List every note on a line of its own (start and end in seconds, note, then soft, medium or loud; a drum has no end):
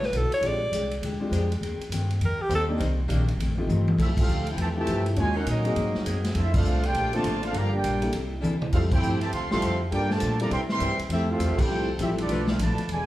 0.00 0.11 A1 medium
0.00 0.11 F#3 medium
0.00 0.10 D4 medium
0.00 0.10 E4 medium
0.00 0.10 B4 loud
0.00 snare soft
0.05 0.18 B4 loud
0.12 0.30 B1 medium
0.12 0.33 D3 medium
0.12 0.33 B3 medium
0.12 0.34 E4 medium
0.12 0.34 F#4 medium
0.12 hi-hat pedal medium
0.12 ride medium
0.17 0.33 A4 medium
0.31 0.48 C#5 loud
0.31 muted upright bass stroke soft
0.31 ride medium
0.41 0.71 A#1 loud
0.41 0.62 A#2 medium
0.41 0.63 G#3 medium
0.41 0.60 G#3 medium
0.41 0.60 C4 medium
0.41 0.60 D4 medium
0.41 0.63 D4 medium
0.41 0.60 F4 medium
0.41 0.60 G4 medium
0.41 0.64 G4 medium
0.41 ride medium
0.47 1.04 D5 loud
0.71 1.01 C2 medium
0.71 0.92 A#2 medium
0.71 0.92 G#3 medium
0.71 0.93 D4 medium
0.71 0.93 G4 medium
0.71 hi-hat pedal medium
0.71 ride medium
0.91 ride medium
1.01 1.19 D2 medium
1.01 1.22 A#2 medium
1.01 1.22 G#3 medium
1.01 1.23 D4 medium
1.01 1.23 G4 medium
1.01 ride medium
1.20 1.30 G#3 medium
1.20 1.30 C4 medium
1.20 1.30 D4 medium
1.20 1.31 F4 medium
1.20 1.31 G4 medium
1.20 muted upright bass stroke soft
1.31 1.60 F2 loud
1.31 1.51 A#2 medium
1.31 1.44 G#3 medium
1.31 1.52 G#3 medium
1.31 1.45 D4 medium
1.31 1.52 D4 medium
1.31 1.44 G4 medium
1.31 1.53 G4 medium
1.31 1.45 C5 loud
1.31 hi-hat pedal medium
1.31 ride medium
1.52 ride medium
1.61 1.79 D#2 medium
1.61 1.81 D#3 medium
1.61 1.81 A#3 medium
1.61 1.82 C4 medium
1.61 1.82 G4 medium
1.61 ride medium
1.79 muted upright bass stroke soft
1.79 ride medium
1.89 2.19 G2 loud
1.89 2.11 D#3 medium
1.89 2.11 A#3 medium
1.89 2.12 C4 medium
1.89 hi-hat pedal medium
1.89 ride medium
1.93 2.12 G4 medium
2.10 ride medium
2.20 2.38 F2 medium
2.20 2.40 D#3 soft
2.20 2.41 A#3 medium
2.20 2.42 C4 medium
2.20 2.42 G4 medium
2.20 ride medium
2.25 2.43 A#4 loud
2.40 2.51 G4 loud
2.40 muted upright bass stroke soft
2.49 2.78 D#2 loud
2.49 2.70 D#3 medium
2.49 2.62 A#3 medium
2.49 2.71 A#3 medium
2.49 2.71 C4 medium
2.49 2.62 D#4 medium
2.49 2.62 G4 medium
2.49 2.71 G4 medium
2.49 2.62 C5 loud
2.49 hi-hat pedal medium
2.49 ride medium
2.55 2.65 A4 medium
2.68 2.79 A#3 medium
2.68 2.78 C4 medium
2.68 2.79 D4 medium
2.68 2.79 D#4 medium
2.68 2.79 G4 medium
2.77 3.08 C2 loud
2.77 3.00 C3 medium
2.77 2.91 A#3 loud
2.77 2.91 D4 medium
2.77 2.91 D#4 medium
2.77 2.91 C5 loud
2.77 ride medium
2.81 3.00 D#3 medium
2.81 3.01 A#3 medium
2.81 3.01 D4 medium
3.07 3.37 A#1 loud
3.07 3.29 C3 medium
3.07 3.29 D#3 medium
3.07 3.21 A#3 loud
3.07 3.21 D4 loud
3.07 3.20 D#4 medium
3.07 3.21 G4 loud
3.07 hi-hat pedal medium
3.07 ride medium
3.11 3.30 A#3 medium
3.11 3.30 D4 medium
3.28 ride medium
3.37 3.67 A1 medium
3.37 3.58 F2 medium
3.37 3.59 D#3 medium
3.37 3.59 A3 medium
3.37 ride medium
3.42 3.60 C4 medium
3.58 3.96 A3 medium
3.58 3.96 C4 medium
3.58 3.97 D#4 medium
3.58 3.96 F4 medium
3.58 3.96 G4 medium
3.67 3.97 G1 loud
3.67 3.89 F2 medium
3.67 3.89 D#3 medium
3.67 3.89 A3 medium
3.67 hi-hat pedal medium
3.67 high tom soft
3.71 3.90 C4 medium
3.88 high tom medium
3.98 4.27 C2 medium
3.98 4.18 F3 medium
3.98 4.42 G3 medium
3.98 4.18 A3 medium
3.98 4.09 A3 medium
3.98 4.43 E4 medium
3.98 4.19 E4 medium
3.98 4.09 E4 medium
3.98 4.43 F4 medium
3.98 4.43 A4 loud
3.98 4.09 A4 medium
3.98 kick medium
3.98 crash medium
4.02 4.09 C4 medium
4.02 4.20 G4 medium
4.02 4.09 G4 medium
4.02 4.09 E5 medium
4.17 4.45 A3 medium
4.17 4.46 C4 medium
4.17 4.47 C4 medium
4.17 4.46 F4 medium
4.17 kick loud
4.17 crash medium
4.21 4.47 G4 medium
4.21 4.47 A4 medium
4.21 4.47 F5 medium
4.27 4.57 D2 loud
4.27 4.47 F3 medium
4.27 4.48 A3 medium
4.27 4.48 E4 medium
4.27 4.48 G4 medium
4.27 hi-hat pedal medium
4.47 4.59 C4 medium
4.47 4.59 E4 medium
4.47 4.59 G4 medium
4.47 ride medium
4.51 4.60 A4 medium
4.51 4.60 C5 medium
4.51 4.60 G5 loud
4.57 4.86 E2 medium
4.57 4.68 C3 medium
4.57 4.67 E3 medium
4.57 4.77 F3 medium
4.57 4.78 A3 medium
4.57 4.68 A3 medium
4.57 4.78 E4 medium
4.57 4.79 G4 medium
4.57 ride medium
4.61 4.69 G4 medium
4.61 4.69 C5 medium
4.61 4.68 E5 medium
4.61 4.69 A5 medium
4.76 5.04 C3 loud
4.76 5.04 E3 medium
4.76 5.15 A3 medium
4.76 5.04 A3 loud
4.76 5.15 C4 medium
4.76 5.15 E4 medium
4.76 5.15 F4 medium
4.76 5.15 G4 medium
4.76 5.05 G4 medium
4.76 5.05 C5 medium
4.76 5.05 E5 medium
4.76 5.05 A5 loud
4.86 5.16 G2 loud
4.86 5.06 F3 medium
4.86 5.07 A3 medium
4.86 5.07 E4 medium
4.86 5.08 G4 medium
4.86 hi-hat pedal medium
4.86 ride medium
5.06 ride medium
5.16 5.45 D#2 loud
5.16 5.36 D#3 medium
5.16 5.35 G#3 medium
5.16 5.34 A#3 medium
5.16 5.37 A#3 medium
5.16 5.34 C#4 medium
5.16 5.37 C#4 medium
5.16 5.34 D#4 medium
5.16 5.34 F4 medium
5.16 5.36 F4 medium
5.16 5.34 F#4 medium
5.16 5.38 F#4 medium
5.16 5.36 A#4 medium
5.16 5.36 C#5 medium
5.16 5.36 G#5 loud
5.16 ride medium
5.33 5.72 F#3 loud
5.33 5.73 C#4 loud
5.33 5.73 D#4 medium
5.33 5.73 A#4 loud
5.37 5.46 A#3 medium
5.37 5.47 C#4 medium
5.37 5.47 D#4 medium
5.37 5.47 F#4 medium
5.37 5.47 A#4 medium
5.37 5.47 C#5 medium
5.37 5.47 F#5 medium
5.45 5.75 A#2 loud
5.45 5.65 D#3 medium
5.45 6.21 F#3 medium
5.45 5.66 A#3 medium
5.45 6.20 A#3 medium
5.45 5.66 C#4 medium
5.45 6.21 D#4 medium
5.45 5.67 F#4 medium
5.45 6.22 A#4 medium
5.45 hi-hat pedal medium
5.45 ride medium
5.50 5.76 C#4 medium
5.50 6.22 F#4 medium
5.50 6.22 D#5 loud
5.65 6.03 A#3 medium
5.65 6.03 C4 medium
5.65 6.03 D#4 medium
5.65 6.04 F#4 medium
5.65 6.04 G#4 medium
5.65 ride medium
5.76 5.96 G#2 medium
5.76 5.93 G#2 medium
5.76 5.96 F#3 soft
5.76 5.97 A#3 medium
5.76 5.97 C4 medium
5.76 ride medium
5.95 muted upright bass stroke soft
5.95 snare soft
6.05 6.35 F#2 medium
6.05 6.25 G#2 medium
6.05 6.35 F#3 medium
6.05 6.26 F#3 medium
6.05 6.33 A#3 medium
6.05 6.26 A#3 medium
6.05 6.34 C4 medium
6.05 6.26 C4 medium
6.05 6.35 G#4 medium
6.05 hi-hat pedal medium
6.05 ride medium
6.24 snare medium
6.24 ride medium
6.34 6.64 F2 loud
6.34 7.17 D3 medium
6.34 7.17 A#3 medium
6.34 6.55 A#3 medium
6.34 7.17 C4 medium
6.34 6.53 C4 medium
6.34 6.55 D4 medium
6.34 6.53 E4 medium
6.34 6.53 F4 loud
6.34 7.17 A4 medium
6.34 6.53 A4 medium
6.34 6.56 A4 medium
6.34 6.53 E5 medium
6.34 ride medium
6.38 6.57 C5 medium
6.54 6.83 A3 loud
6.54 6.83 D4 loud
6.54 6.85 D4 medium
6.54 6.84 F4 loud
6.54 6.84 A4 medium
6.54 6.84 C5 medium
6.54 6.84 F5 loud
6.54 kick loud
6.54 crash medium
6.65 6.94 C2 loud
6.65 6.84 A#3 medium
6.65 6.85 D4 medium
6.65 6.85 A4 medium
6.65 6.86 C5 medium
6.65 hi-hat pedal medium
6.83 7.12 A3 medium
6.83 7.13 D4 medium
6.83 7.15 F4 loud
6.83 7.13 G4 medium
6.83 7.15 C5 loud
6.83 7.14 D5 loud
6.83 7.14 G5 loud
6.83 ride medium
6.94 7.23 A#1 medium
6.94 7.14 A#3 medium
6.94 7.15 D4 medium
6.94 7.15 A4 medium
6.94 7.16 C5 medium
6.94 ride medium
7.13 7.41 D3 medium
7.13 7.41 F3 loud
7.13 7.41 A3 loud
7.13 7.51 A#3 medium
7.13 7.52 C4 medium
7.13 7.52 D4 medium
7.13 7.52 F4 medium
7.13 7.43 F4 loud
7.13 7.52 A4 medium
7.13 7.43 C5 medium
7.13 7.43 D5 medium
7.13 7.42 A5 loud
7.13 ride medium
7.24 7.52 A1 medium
7.24 7.44 A#3 medium
7.24 7.44 D4 medium
7.24 7.45 A4 medium
7.24 7.45 C5 medium
7.24 hi-hat pedal soft
7.24 ride medium
7.42 7.53 A3 medium
7.42 7.54 D4 medium
7.42 7.53 F4 medium
7.42 ride medium
7.46 7.56 D4 loud
7.46 7.55 A4 loud
7.46 7.56 C5 medium
7.46 7.56 F5 loud
7.53 7.82 G1 medium
7.53 7.72 D3 loud
7.53 7.72 F3 medium
7.53 7.73 G3 medium
7.53 7.71 A#3 loud
7.53 7.74 D4 medium
7.53 7.75 F4 medium
7.53 7.74 G4 medium
7.53 7.75 A#4 medium
7.53 7.74 D5 loud
7.53 7.74 F5 loud
7.53 7.74 A#5 loud
7.53 ride medium
7.72 8.10 A#3 medium
7.72 8.10 D4 medium
7.72 8.10 G4 medium
7.76 8.12 F4 medium
7.76 8.13 A#4 medium
7.76 8.13 D5 medium
7.76 8.13 G5 loud
7.83 8.13 A#1 loud
7.83 8.03 G3 medium
7.83 8.03 D4 medium
7.83 8.04 F4 medium
7.83 8.04 A#4 medium
7.83 hi-hat pedal medium
7.83 ride medium
8.02 8.12 G3 medium
8.02 8.12 A#3 medium
8.02 8.12 D4 medium
8.02 8.12 E4 medium
8.02 8.12 A4 medium
8.02 ride medium
8.12 8.42 C2 medium
8.12 8.33 C3 medium
8.12 8.33 A#3 medium
8.12 8.34 E4 medium
8.12 8.34 A4 medium
8.12 ride medium
8.40 8.72 D2 medium
8.40 8.63 C3 medium
8.40 8.54 E3 medium
8.40 8.54 A#3 medium
8.40 8.63 A#3 medium
8.40 8.54 D4 medium
8.40 8.55 A4 medium
8.40 hi-hat pedal medium
8.40 high tom medium
8.45 8.64 E4 medium
8.45 8.64 A4 medium
8.62 mid tom medium
8.73 9.01 F2 loud
8.73 8.92 F3 medium
8.73 8.90 G3 medium
8.73 8.82 A3 medium
8.73 8.93 A3 medium
8.73 8.90 C4 medium
8.73 8.82 C4 medium
8.73 8.90 E4 medium
8.73 8.94 E4 medium
8.73 8.90 F4 medium
8.73 8.82 F4 medium
8.73 8.82 G4 medium
8.73 8.94 G4 medium
8.73 8.82 A4 medium
8.73 8.90 A4 medium
8.73 8.82 F5 loud
8.73 kick medium
8.73 crash medium
8.91 9.20 C4 loud
8.91 9.19 E4 loud
8.91 9.20 E4 medium
8.91 9.19 G4 loud
8.91 9.20 A4 medium
8.91 9.20 C5 medium
8.91 9.20 G5 loud
8.91 kick loud
8.91 crash medium
9.03 9.31 G2 medium
9.03 9.22 F3 medium
9.03 9.23 A3 medium
9.03 9.23 E4 medium
9.03 9.24 G4 medium
9.03 hi-hat pedal medium
9.21 9.31 C3 medium
9.21 9.31 E3 medium
9.21 9.31 A3 medium
9.21 9.32 G4 loud
9.21 9.32 C5 loud
9.21 9.32 E5 medium
9.21 9.32 A5 loud
9.21 ride medium
9.32 9.45 D2 medium
9.32 9.52 D3 soft
9.32 9.49 F3 medium
9.32 9.49 A3 medium
9.32 9.49 C4 medium
9.32 9.53 C4 medium
9.32 9.53 F4 soft
9.32 9.53 G4 medium
9.32 9.50 A4 medium
9.32 9.50 E5 medium
9.32 9.50 F5 medium
9.32 9.50 C6 loud
9.32 ride medium
9.43 9.52 C2 medium
9.50 9.62 A1 medium
9.50 9.78 F3 loud
9.50 9.61 G3 medium
9.50 9.78 A3 loud
9.50 9.78 C4 loud
9.50 9.61 C4 medium
9.50 9.61 E4 medium
9.50 9.61 F4 medium
9.50 9.61 G4 medium
9.50 9.79 A4 loud
9.50 9.79 E5 medium
9.50 9.79 F5 loud
9.50 9.79 C6 loud
9.50 snare medium
9.61 9.91 F2 loud
9.61 9.81 D3 medium
9.61 9.75 F3 medium
9.61 9.75 C4 medium
9.61 9.82 C4 medium
9.61 9.75 E4 medium
9.61 9.82 F4 medium
9.61 9.75 G4 loud
9.61 9.83 G4 medium
9.61 hi-hat pedal medium
9.61 ride medium
9.91 10.20 G2 medium
9.91 10.11 G3 medium
9.91 10.08 G3 medium
9.91 10.08 A#3 loud
9.91 10.08 A#3 medium
9.91 10.12 A#3 medium
9.91 10.09 D4 medium
9.91 10.08 D4 medium
9.91 10.09 F4 medium
9.91 10.10 F4 medium
9.91 10.12 F4 medium
9.91 10.09 G4 medium
9.91 10.08 A4 medium
9.91 10.13 A4 medium
9.91 10.10 A#4 medium
9.91 10.10 D5 loud
9.91 10.10 G5 loud
9.91 ride medium
10.10 10.39 D3 loud
10.10 10.39 F3 medium
10.10 10.40 A3 loud
10.10 10.41 F4 medium
10.10 10.41 A#4 medium
10.10 10.41 D5 medium
10.10 10.41 A5 loud
10.10 snare medium
10.20 10.51 A#2 loud
10.20 10.41 G3 medium
10.20 10.41 A#3 medium
10.20 10.42 F4 medium
10.20 10.42 A4 medium
10.20 hi-hat pedal medium
10.20 ride medium
10.40 10.50 D3 medium
10.40 10.50 F3 medium
10.40 10.50 G3 medium
10.40 10.50 A#3 medium
10.40 10.50 C4 medium
10.40 10.50 D4 medium
10.40 10.50 E4 medium
10.40 10.51 F4 medium
10.40 10.51 A4 medium
10.40 10.51 D5 loud
10.40 10.51 A#5 loud
10.40 ride medium
10.50 10.70 C3 medium
10.50 10.80 C3 medium
10.50 10.59 E3 medium
10.50 10.59 G3 medium
10.50 10.71 A#3 soft
10.50 10.59 C4 medium
10.50 10.72 E4 soft
10.50 10.72 G4 medium
10.50 10.61 A#4 medium
10.50 10.61 E5 medium
10.50 10.61 G5 medium
10.50 10.61 C6 medium
10.50 ride medium
10.69 10.98 E3 loud
10.69 10.98 G3 loud
10.69 10.98 C4 loud
10.69 10.98 A#4 medium
10.69 10.98 E5 medium
10.69 10.98 G5 medium
10.69 10.98 C6 loud
10.69 snare medium
10.80 10.98 G2 loud
10.80 11.00 C3 medium
10.80 10.94 G3 loud
10.80 11.01 A#3 medium
10.80 10.94 C4 medium
10.80 10.94 E4 medium
10.80 11.01 E4 medium
10.80 11.02 G4 medium
10.80 10.93 A#4 medium
10.80 hi-hat pedal medium
10.80 ride medium
10.99 muted upright bass stroke soft
10.99 ride medium
11.09 11.39 F2 loud
11.09 11.30 F3 medium
11.09 11.31 A3 medium
11.09 11.28 A3 medium
11.09 11.28 C4 medium
11.09 11.29 C4 medium
11.09 11.28 E4 medium
11.09 11.31 E4 medium
11.09 11.29 G4 medium
11.09 11.29 A4 loud
11.09 11.29 E5 loud
11.09 ride medium
11.13 11.32 G4 medium
11.30 11.59 A3 loud
11.30 11.59 C4 medium
11.30 11.60 C4 medium
11.30 11.59 F4 medium
11.30 11.60 G4 medium
11.30 11.59 A4 medium
11.30 11.60 F5 medium
11.38 11.51 E2 loud
11.38 11.59 F3 medium
11.38 11.86 G3 medium
11.38 11.60 A3 medium
11.38 11.60 E4 medium
11.38 11.86 E4 medium
11.38 11.85 F4 medium
11.38 11.61 G4 medium
11.38 11.86 A4 medium
11.38 hi-hat pedal medium
11.38 ride medium
11.50 11.58 C2 medium
11.58 11.68 A1 medium
11.58 11.89 C4 medium
11.58 11.89 E4 medium
11.58 11.89 G4 medium
11.58 11.89 A4 loud
11.58 11.89 C5 medium
11.58 11.89 G5 loud
11.58 kick medium
11.58 crash medium
11.69 11.98 C2 medium
11.69 11.89 F3 medium
11.69 11.87 G3 medium
11.69 11.90 A3 medium
11.69 11.87 C4 soft
11.69 11.87 E4 soft
11.69 11.91 E4 medium
11.69 11.87 F4 soft
11.69 11.91 G4 medium
11.69 11.87 A4 medium
11.99 12.28 A1 loud
11.99 12.19 F3 medium
11.99 12.30 G3 medium
11.99 12.20 A3 medium
11.99 12.10 A3 medium
11.99 12.30 C4 medium
11.99 12.09 C4 medium
11.99 12.10 C4 medium
11.99 12.30 E4 medium
11.99 12.10 E4 medium
11.99 12.21 E4 medium
11.99 12.30 F4 medium
11.99 12.10 G4 medium
11.99 12.21 G4 medium
11.99 12.30 A4 medium
11.99 12.09 A4 medium
11.99 12.10 E5 medium
11.99 hi-hat pedal medium
11.99 ride medium
12.18 12.47 F3 medium
12.18 12.47 A3 medium
12.18 12.47 B3 medium
12.18 12.47 D4 medium
12.18 12.47 F4 medium
12.18 12.47 A4 medium
12.18 12.47 D5 medium
12.18 ride medium
12.28 12.58 B1 medium
12.28 12.49 B2 medium
12.28 12.50 F3 medium
12.28 12.42 A3 loud
12.28 12.51 A3 medium
12.28 12.42 D4 medium
12.28 12.42 F4 medium
12.28 12.43 B4 loud
12.28 ride medium
12.33 12.51 D4 medium
12.47 12.60 A3 medium
12.47 12.60 D4 medium
12.47 12.60 F4 medium
12.47 12.61 A4 medium
12.47 12.61 B4 medium
12.47 12.61 F5 medium
12.47 snare medium
12.51 12.61 D4 medium
12.59 12.76 A1 loud
12.59 12.79 B2 medium
12.59 12.88 D3 medium
12.59 12.80 F3 medium
12.59 12.88 F3 medium
12.59 12.88 A3 medium
12.59 12.80 A3 medium
12.59 12.81 D4 medium
12.59 12.89 D5 medium
12.59 12.89 A5 medium
12.59 hi-hat pedal medium
12.59 ride medium
12.63 12.89 F4 medium
12.63 12.89 B4 medium
12.78 muted upright bass stroke soft
12.78 ride medium
12.88 13.06 E1 medium
12.88 13.06 B2 medium
12.88 13.06 D3 medium
12.88 13.06 E3 medium
12.88 13.06 G#3 medium
12.88 13.06 B3 medium
12.88 13.06 D4 medium
12.88 ride medium
12.92 13.06 E4 medium
12.92 13.06 G#4 medium
12.92 13.06 B4 medium
12.92 13.06 D5 medium
12.92 13.06 G#5 medium